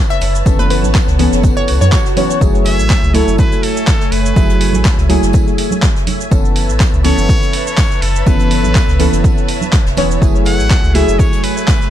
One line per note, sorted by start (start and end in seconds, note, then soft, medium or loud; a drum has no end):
0.00 0.43 E3 medium
0.00 0.43 B3 medium
0.00 0.44 C#4 medium
0.00 0.44 A4 loud
0.00 2.37 B4 medium
0.00 6.28 C#5 medium
0.00 0.42 E5 medium
0.00 2.37 A5 medium
0.10 0.46 E5 medium
0.10 snare medium
0.10 shaker soft
0.21 0.42 F#1 medium
0.21 open hi-hat loud
0.21 tambourine medium
0.35 shaker medium
0.45 0.85 F#1 loud
0.45 1.16 E3 medium
0.45 1.16 B3 medium
0.45 1.17 C#4 medium
0.45 1.17 A4 medium
0.45 2.39 F#5 medium
0.45 kick loud
0.45 tambourine medium
0.45 shaker medium
0.59 0.66 B4 medium
0.59 closed hi-hat soft
0.59 high conga medium
0.59 shaker soft
0.70 0.79 B4 medium
0.70 open hi-hat loud
0.70 tambourine medium
0.83 0.93 A1 loud
0.83 low conga medium
0.83 shaker medium
0.95 kick loud
0.95 snare loud
0.95 clap loud
0.95 tambourine medium
0.95 shaker medium
1.08 1.27 C#2 medium
1.08 snare medium
1.08 shaker soft
1.18 2.14 E3 medium
1.18 2.14 B3 medium
1.18 2.15 C#4 medium
1.18 2.15 A4 loud
1.18 open hi-hat loud
1.18 tambourine medium
1.18 high conga medium
1.32 1.70 F#1 medium
1.32 snare soft
1.32 shaker medium
1.43 kick loud
1.43 tambourine medium
1.43 swell medium
1.43 shaker medium
1.57 1.72 C#5 medium
1.57 shaker soft
1.68 1.79 C#2 medium
1.68 open hi-hat loud
1.68 tambourine medium
1.81 1.91 F#2 medium
1.81 1.88 C#5 medium
1.81 low conga medium
1.81 shaker medium
1.92 2.01 C#5 medium
1.92 kick loud
1.92 snare loud
1.92 clap loud
1.92 tambourine medium
1.92 shaker medium
2.06 snare medium
2.06 shaker soft
2.16 2.38 E3 medium
2.16 2.38 B3 medium
2.16 2.39 C#4 medium
2.16 2.39 C#5 loud
2.16 open hi-hat loud
2.16 tambourine medium
2.16 low conga medium
2.30 shaker medium
2.40 2.80 F#1 loud
2.40 3.11 F#3 medium
2.40 3.12 A3 medium
2.40 6.28 A3 medium
2.40 3.12 E4 medium
2.40 3.12 G#4 medium
2.40 11.90 E5 medium
2.40 6.28 G#5 medium
2.40 kick loud
2.40 tambourine medium
2.40 shaker medium
2.55 shaker soft
2.65 3.16 E5 loud
2.65 open hi-hat loud
2.65 tambourine medium
2.79 2.88 A1 loud
2.79 shaker medium
2.90 kick loud
2.90 snare loud
2.90 clap loud
2.90 tambourine medium
2.90 shaker medium
3.03 3.23 C#2 medium
3.03 shaker soft
3.14 4.33 F#3 medium
3.14 4.34 A3 medium
3.14 4.34 E4 medium
3.14 4.34 A4 loud
3.14 3.38 C#5 loud
3.14 open hi-hat loud
3.14 tambourine medium
3.14 high conga medium
3.27 3.37 F#1 loud
3.27 shaker medium
3.38 3.65 B4 loud
3.38 kick loud
3.38 tambourine medium
3.38 shaker medium
3.52 closed hi-hat soft
3.52 shaker soft
3.63 4.13 A4 loud
3.63 open hi-hat loud
3.63 tambourine medium
3.77 shaker medium
3.87 kick loud
3.87 snare loud
3.87 clap loud
3.87 tambourine medium
3.87 shaker medium
4.01 snare medium
4.01 shaker soft
4.12 4.33 F#1 loud
4.12 5.09 B4 medium
4.12 open hi-hat loud
4.12 tambourine medium
4.25 shaker medium
4.36 4.75 F#1 loud
4.36 5.06 F#3 medium
4.36 5.07 A3 medium
4.36 5.07 E4 medium
4.36 5.07 G#4 medium
4.36 kick loud
4.36 tambourine medium
4.36 shaker medium
4.49 closed hi-hat soft
4.49 shaker soft
4.61 open hi-hat loud
4.61 tambourine medium
4.73 4.83 A1 loud
4.73 low conga medium
4.73 shaker medium
4.85 kick loud
4.85 snare loud
4.85 clap loud
4.85 tambourine medium
4.85 shaker medium
4.98 5.18 C#2 medium
4.98 snare soft
4.98 shaker soft
5.09 6.28 F#3 medium
5.09 6.29 A3 medium
5.09 6.29 E4 medium
5.09 6.29 G#4 loud
5.09 open hi-hat loud
5.09 tambourine medium
5.09 high conga medium
5.22 5.32 F#1 medium
5.22 snare medium
5.22 shaker medium
5.33 kick loud
5.33 tambourine medium
5.33 shaker medium
5.47 shaker soft
5.58 open hi-hat loud
5.58 tambourine medium
5.71 low conga medium
5.71 shaker medium
5.82 kick loud
5.82 snare loud
5.82 clap loud
5.82 tambourine medium
5.82 shaker medium
5.96 snare medium
5.96 shaker soft
6.07 open hi-hat loud
6.07 tambourine medium
6.07 low conga medium
6.20 shaker medium
6.31 6.70 F#1 loud
6.31 7.02 E3 medium
6.31 7.02 B3 medium
6.31 7.02 C#4 medium
6.31 7.02 A4 medium
6.31 10.18 B4 medium
6.31 11.90 C#5 medium
6.31 10.18 A5 loud
6.31 kick loud
6.31 tambourine medium
6.31 shaker medium
6.45 shaker soft
6.56 open hi-hat loud
6.56 tambourine medium
6.69 6.78 A1 loud
6.69 shaker medium
6.80 kick loud
6.80 snare loud
6.80 clap loud
6.80 tambourine medium
6.80 shaker medium
6.93 7.13 C#2 medium
6.93 shaker soft
7.04 8.24 E3 medium
7.04 8.24 B3 medium
7.04 8.24 C#4 medium
7.04 8.24 A4 loud
7.04 7.63 C#5 loud
7.04 open hi-hat loud
7.04 tambourine medium
7.04 high conga medium
7.18 7.27 F#1 loud
7.18 shaker medium
7.29 kick loud
7.29 tambourine medium
7.29 shaker medium
7.42 closed hi-hat soft
7.42 shaker soft
7.53 open hi-hat loud
7.53 tambourine medium
7.66 8.04 C#5 loud
7.66 shaker medium
7.77 kick loud
7.77 snare loud
7.77 clap loud
7.77 tambourine medium
7.77 shaker medium
7.91 snare medium
7.91 shaker soft
8.02 8.23 F#1 loud
8.02 8.28 A4 loud
8.02 open hi-hat loud
8.02 tambourine medium
8.16 shaker medium
8.26 8.66 F#1 loud
8.26 8.97 E3 medium
8.26 8.97 B3 medium
8.26 8.97 C#4 medium
8.26 8.98 A4 medium
8.26 9.24 B4 loud
8.26 kick loud
8.26 tambourine medium
8.26 shaker medium
8.39 closed hi-hat soft
8.39 shaker soft
8.51 open hi-hat loud
8.51 tambourine medium
8.64 8.74 A1 loud
8.64 low conga medium
8.64 shaker medium
8.75 kick loud
8.75 snare loud
8.75 clap loud
8.75 tambourine medium
8.75 shaker medium
8.88 9.08 C#2 medium
8.88 snare soft
8.88 shaker soft
8.99 9.95 E3 medium
8.99 9.95 B3 medium
8.99 9.95 C#4 medium
8.99 9.95 A4 loud
8.99 open hi-hat loud
8.99 tambourine medium
8.99 high conga medium
9.13 9.22 F#1 loud
9.13 closed hi-hat soft
9.13 shaker medium
9.24 kick loud
9.24 tambourine medium
9.24 shaker medium
9.38 shaker soft
9.48 open hi-hat loud
9.48 tambourine medium
9.61 low conga medium
9.61 shaker medium
9.72 kick loud
9.72 snare loud
9.72 clap loud
9.72 tambourine medium
9.72 shaker medium
9.86 9.95 E1 medium
9.86 snare medium
9.86 shaker soft
9.97 10.18 E1 loud
9.97 10.19 E3 medium
9.97 10.19 B3 medium
9.97 10.19 C#4 medium
9.97 10.19 C#5 loud
9.97 open hi-hat loud
9.97 tambourine medium
9.97 low conga medium
10.11 shaker medium
10.21 10.61 F#1 loud
10.21 10.92 F#3 medium
10.21 10.92 A3 medium
10.21 11.90 A3 medium
10.21 10.92 E4 medium
10.21 10.93 G#4 medium
10.21 11.90 G#5 medium
10.21 kick loud
10.21 tambourine medium
10.21 shaker medium
10.35 shaker soft
10.45 10.96 F#5 loud
10.45 open hi-hat loud
10.45 tambourine medium
10.59 10.69 A1 loud
10.59 shaker medium
10.70 kick loud
10.70 snare loud
10.70 clap loud
10.70 tambourine loud
10.70 shaker medium
10.84 11.03 C#2 medium
10.84 shaker soft
10.94 11.90 F#3 medium
10.94 11.90 A3 medium
10.94 11.90 E4 medium
10.94 11.90 G#4 loud
10.94 11.21 E5 loud
10.94 open hi-hat loud
10.94 tambourine medium
10.94 high conga medium
11.08 11.17 F#1 medium
11.08 shaker medium
11.19 11.45 C#5 loud
11.19 kick loud
11.19 tambourine loud
11.19 shaker medium
11.33 closed hi-hat soft
11.33 shaker soft
11.43 11.90 B4 loud
11.43 open hi-hat loud
11.43 tambourine medium
11.57 shaker medium
11.68 kick loud
11.68 snare loud
11.68 clap loud
11.68 tambourine medium
11.68 shaker medium
11.81 snare medium
11.81 shaker soft